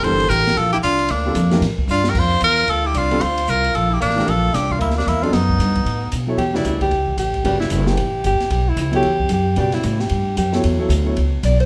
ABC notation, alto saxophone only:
X:1
M:4/4
L:1/16
Q:"Swing" 1/4=226
K:Bblyd
V:1 name="Alto saxophone"
A4 G4 F2 E2 D4 | B,8 z4 D3 G | F4 F4 F2 E2 D4 | F4 F4 F2 E2 B,4 |
F4 D2 D2 B,2 B,2 B,2 D2 | =B,12 z4 | [K:Edor] G2 E2 E2 G6 G4 | G2 E2 E2 G6 G4 |
G2 E2 E2 G6 G4 | G2 E2 E2 G6 G4 | z12 d2 =c2 |]